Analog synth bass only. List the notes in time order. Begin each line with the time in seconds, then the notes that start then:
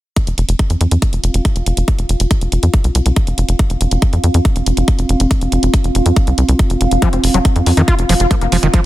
0.27 F1
0.38 F1
0.49 F1
0.70 F2
0.81 F2
0.91 F2
1.13 F1
1.24 F1
1.34 F1
1.56 F1
1.66 F1
1.77 F1
1.99 F1
2.09 F1
2.20 F1
2.41 F1
2.52 F1
2.63 F2
2.84 C2
2.95 C2
3.06 C2
3.27 F1
3.38 F1
3.49 F1
3.70 F1
3.81 F1
3.91 F1
4.13 F2
4.24 F2
4.34 F2
4.56 F1
4.66 F1
4.77 F1
4.99 F1
5.09 F1
5.20 F1
5.41 F1
5.52 F1
5.63 F1
5.84 F1
5.95 F1
6.06 F2
6.27 C2
6.38 C2
6.49 C2
6.70 F1
6.81 F1
6.91 F1
7.13 F1
7.24 F1
7.34 F1
7.56 F2
7.66 F2
7.77 F2
7.99 F1
8.09 F1
8.20 F1
8.41 F1
8.52 F1
8.63 F1